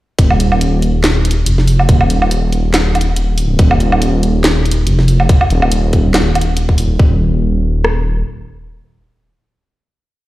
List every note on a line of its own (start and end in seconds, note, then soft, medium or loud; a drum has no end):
0.19 1.45 D#1 loud
0.19 kick loud
0.19 closed hi-hat medium
0.30 low woodblock medium
0.40 closed hi-hat medium
0.52 low woodblock medium
0.61 closed hi-hat medium
0.82 closed hi-hat medium
1.04 snare loud
1.04 clap medium
1.04 closed hi-hat medium
1.25 closed hi-hat soft
1.31 closed hi-hat medium
1.46 1.87 F1 loud
1.46 closed hi-hat medium
1.58 snare soft
1.67 open hi-hat medium
1.79 low woodblock medium
1.89 3.15 D#1 medium
1.89 kick loud
1.89 closed hi-hat medium
2.01 low woodblock medium
2.10 closed hi-hat medium
2.22 low woodblock medium
2.31 closed hi-hat medium
2.52 closed hi-hat medium
2.74 snare loud
2.74 clap medium
2.74 closed hi-hat medium
2.74 low woodblock soft
2.95 closed hi-hat soft
2.95 low woodblock medium
3.01 closed hi-hat medium
3.16 3.58 D#1 loud
3.16 closed hi-hat medium
3.38 open hi-hat medium
3.59 4.85 D#1 medium
3.59 kick loud
3.59 closed hi-hat medium
3.71 low woodblock medium
3.80 closed hi-hat medium
3.92 low woodblock medium
4.02 closed hi-hat medium
4.23 closed hi-hat soft
4.44 snare loud
4.44 clap medium
4.44 closed hi-hat medium
4.66 closed hi-hat soft
4.71 closed hi-hat medium
4.87 5.28 F1 loud
4.87 closed hi-hat medium
4.99 snare soft
5.08 open hi-hat medium
5.20 low woodblock medium
5.29 kick loud
5.29 closed hi-hat medium
5.41 low woodblock medium
5.50 6.77 D#1 loud
5.50 closed hi-hat medium
5.62 low woodblock medium
5.72 closed hi-hat medium
5.93 kick medium
5.93 closed hi-hat soft
6.14 snare loud
6.14 clap medium
6.14 closed hi-hat medium
6.14 low woodblock medium
6.35 closed hi-hat soft
6.35 low woodblock medium
6.41 closed hi-hat medium
6.57 closed hi-hat medium
6.69 kick medium
6.78 6.98 D#1 loud
6.78 open hi-hat medium
6.99 8.23 D#1 loud
6.99 kick loud
7.84 cross-stick medium